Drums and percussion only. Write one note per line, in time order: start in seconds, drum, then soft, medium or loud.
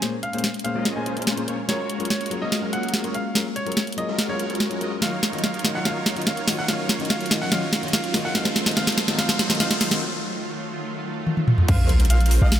0.02 snare medium
0.02 closed hi-hat medium
0.23 closed hi-hat medium
0.33 closed hi-hat soft
0.38 closed hi-hat medium
0.44 snare medium
0.44 closed hi-hat medium
0.54 closed hi-hat soft
0.59 closed hi-hat medium
0.65 closed hi-hat medium
0.85 snare medium
0.85 closed hi-hat medium
1.06 closed hi-hat medium
1.17 closed hi-hat soft
1.22 closed hi-hat medium
1.27 snare medium
1.27 closed hi-hat medium
1.37 closed hi-hat medium
1.48 closed hi-hat medium
1.69 snare medium
1.69 closed hi-hat medium
1.90 closed hi-hat medium
2.00 closed hi-hat soft
2.05 closed hi-hat medium
2.10 snare medium
2.10 closed hi-hat medium
2.21 closed hi-hat soft
2.26 closed hi-hat medium
2.31 closed hi-hat medium
2.52 snare medium
2.52 closed hi-hat medium
2.73 closed hi-hat medium
2.83 closed hi-hat soft
2.89 closed hi-hat medium
2.94 snare medium
2.94 closed hi-hat medium
3.04 closed hi-hat medium
3.14 closed hi-hat medium
3.35 snare medium
3.35 closed hi-hat medium
3.56 closed hi-hat medium
3.67 closed hi-hat soft
3.72 closed hi-hat medium
3.77 snare medium
3.77 closed hi-hat medium
3.87 closed hi-hat soft
3.92 closed hi-hat medium
3.98 closed hi-hat medium
4.19 snare medium
4.19 closed hi-hat medium
4.39 closed hi-hat medium
4.50 closed hi-hat soft
4.55 closed hi-hat medium
4.60 snare medium
4.60 closed hi-hat medium
4.71 closed hi-hat medium
4.81 closed hi-hat medium
5.02 snare medium
5.02 closed hi-hat medium
5.23 snare medium
5.23 closed hi-hat medium
5.33 closed hi-hat soft
5.38 closed hi-hat medium
5.44 snare medium
5.44 closed hi-hat medium
5.54 closed hi-hat soft
5.59 closed hi-hat medium
5.65 snare medium
5.65 closed hi-hat medium
5.85 snare medium
5.85 closed hi-hat medium
6.06 snare medium
6.06 closed hi-hat medium
6.16 closed hi-hat soft
6.22 closed hi-hat medium
6.27 snare medium
6.27 closed hi-hat medium
6.37 closed hi-hat medium
6.48 snare medium
6.48 open hi-hat medium
6.68 snare medium
6.68 closed hi-hat medium
6.89 snare medium
6.89 closed hi-hat medium
7.00 closed hi-hat soft
7.05 closed hi-hat medium
7.10 snare medium
7.10 closed hi-hat medium
7.21 closed hi-hat soft
7.26 closed hi-hat medium
7.31 snare medium
7.31 closed hi-hat medium
7.52 snare medium
7.52 closed hi-hat medium
7.73 snare medium
7.73 closed hi-hat medium
7.83 closed hi-hat soft
7.88 closed hi-hat medium
7.93 snare medium
7.93 closed hi-hat medium
8.04 closed hi-hat medium
8.14 snare medium
8.14 open hi-hat medium
8.35 snare medium
8.35 closed hi-hat medium
8.45 snare medium
8.56 snare medium
8.56 closed hi-hat medium
8.66 snare medium
8.66 closed hi-hat soft
8.71 closed hi-hat medium
8.77 snare medium
8.77 closed hi-hat medium
8.87 snare medium
8.87 closed hi-hat soft
8.92 closed hi-hat medium
8.98 snare loud
8.98 closed hi-hat medium
9.08 snare medium
9.19 snare medium
9.19 closed hi-hat medium
9.29 snare medium
9.39 snare loud
9.39 closed hi-hat medium
9.50 snare medium
9.50 closed hi-hat soft
9.55 closed hi-hat medium
9.60 snare loud
9.60 closed hi-hat medium
9.71 snare medium
9.71 closed hi-hat medium
9.81 snare loud
9.81 open hi-hat loud
9.91 snare medium
11.27 high tom medium
11.37 high tom medium
11.48 mid tom medium
11.58 mid tom medium
11.68 kick loud
11.68 closed hi-hat medium
11.68 crash loud
11.89 closed hi-hat medium
12.00 closed hi-hat medium
12.05 closed hi-hat medium
12.10 closed hi-hat medium
12.21 closed hi-hat soft
12.26 closed hi-hat medium
12.31 open hi-hat loud
12.52 snare loud
12.52 closed hi-hat medium